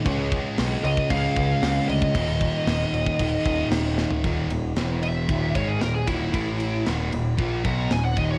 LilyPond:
<<
  \new Staff \with { instrumentName = "Lead electric guitar" } { \time 4/4 \key des \mixolydian \tempo 4 = 114 r4. ees''8 f''4. ees''8~ | ees''2. r4 | r4. e''4 des''16 aes'16 bes'16 aes'16 fes'8~ | fes'4 r4. bes''8 aes''16 ges''16 ees''16 des''16 | }
  \new Staff \with { instrumentName = "Distorted electric guitar" } { \clef bass \time 4/4 \key des \mixolydian <des aes des'>2 <des aes des'>2 | <ees, bes, ees>2 <ees, bes, ees>2 | <ees, bes, ees>8 <ees, bes,>8 <e, b, e>4 <ees, bes, ees>8 <aes, ees aes>8 <ees, bes,>8 <ees, bes, ees>8 | <a, e a>4 <ees, bes, ees>8 <ees, bes,>8 <bes, f bes>8 <ces ges ces'>8 <ees, bes,>8 <ees, bes, ees>8 | }
  \new Staff \with { instrumentName = "Picked electric bass" } { \clef bass \time 4/4 \key des \mixolydian des,4 ces,8 des,8 des,8 des,8 des,8 d,8 | ees,,4 ees,,8 ees,,8 ees,,8 ees,,8 ees,,4 | ees,,8 ees,,8 e,,4 ees,,8 aes,,8 ees,,8 ees,,8 | a,,4 ees,,8 ees,,8 bes,,8 ces,8 ees,,8 ees,,8 | }
  \new DrumStaff \with { instrumentName = "Drums" } \drummode { \time 4/4 <cymc bd>8 <cymc bd>8 <cymc sn>8 cymc16 bd16 <cymc bd>8 <cymc bd>8 <cymc sn>8 cymc16 bd16 | <cymc bd>8 <cymc bd>8 <cymc sn>8 cymc16 bd16 <cymc bd>8 <cymc bd>8 <cymc sn>8 sn16 tomfh16 | <bd cymr>8 cymr8 <cymr sn>8 cymr8 <bd cymr>8 <bd cymr>8 <cymr sn>8 <bd cymr>8 | <bd cymr>8 cymr8 <cymr sn>8 cymr8 <bd cymr>8 <bd cymr>8 <cymr sn>8 <bd cymr>8 | }
>>